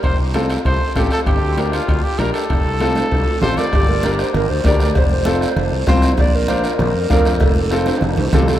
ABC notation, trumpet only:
X:1
M:4/4
L:1/8
Q:1/4=195
K:Fmix
V:1 name="Trumpet"
c z3 c2 G A | G3 F2 G B A- | A6 c d- | d3 z4 z |
z8 | z8 | z8 |]